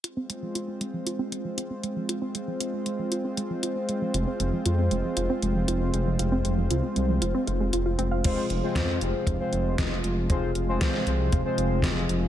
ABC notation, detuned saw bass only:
X:1
M:4/4
L:1/8
Q:1/4=117
K:Fm
V:1 name="Detuned saw bass" clef=bass
z8 | z8 | F,,, F,,, F,, F,,, F,,, F,,, F,,, F,,, | F,,, F,,, C,, C,, F,,, F,,, F,,, F,,, |
F,,, F,,, F,, F,,, F,,, F,,, F,,, F,,, | F,,, F,,, C,, C,, F,,, F,,, F,,, F,,, |]